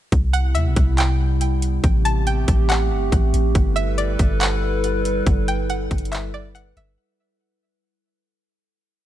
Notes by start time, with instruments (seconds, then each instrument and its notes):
0.12 808-style bass C2, ambient pad C3 G3 B3 E4, kick, closed hi-hat
0.33 synth pluck F#5, closed hi-hat
0.55 808-style bass E2, synth pluck E5, closed hi-hat
0.66 808-style bass C2
0.76 808-style bass C2, kick, closed hi-hat
0.98 synth pluck G5, clap, closed hi-hat
1.41 closed hi-hat
1.62 closed hi-hat
1.84 808-style bass A1, ambient pad A3 C4 G4, kick, closed hi-hat
2.05 synth pluck A5, closed hi-hat
2.27 synth pluck G5, closed hi-hat
2.48 808-style bass A1, kick, closed hi-hat
2.69 synth pluck F#5, clap, closed hi-hat
2.91 808-style bass G1
3.12 808-style bass A1, kick, closed hi-hat
3.34 808-style bass A1, closed hi-hat
3.55 808-style bass G1, ambient pad G3 E4 A4 B4, kick, closed hi-hat
3.76 synth pluck E5, closed hi-hat
3.98 synth pluck D5, closed hi-hat
4.19 808-style bass G1, kick, closed hi-hat
4.41 synth pluck F#5, clap, closed hi-hat
4.84 closed hi-hat
5.05 closed hi-hat
5.27 808-style bass G1, kick, closed hi-hat
5.48 synth pluck G5, closed hi-hat
5.70 synth pluck F#5, closed hi-hat
5.91 808-style bass G1, kick, closed hi-hat, open hi-hat
5.98 closed hi-hat
6.05 closed hi-hat
6.12 synth pluck E5, clap, closed hi-hat
6.34 synth pluck D5
6.55 synth pluck F#5, closed hi-hat
6.77 808-style bass G1, synth pluck E5, closed hi-hat